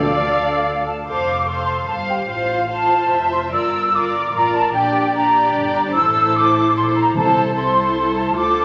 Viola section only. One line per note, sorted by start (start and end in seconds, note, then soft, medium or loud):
0.00 0.85 A4 medium
1.07 1.45 A4 soft
1.47 1.87 A4 soft
1.88 1.96 A4 soft
2.10 2.29 G4 soft
2.30 2.69 F4 soft
2.70 3.51 F4 soft
3.52 3.92 F4 soft
3.93 4.32 F4 medium
4.33 4.73 F4 medium
4.75 5.14 D4 medium
5.15 5.93 D4 medium
5.95 6.74 E4 medium
6.75 7.14 E4 medium
7.15 7.55 E4 medium
7.56 8.35 E4 medium
8.35 8.65 F4 soft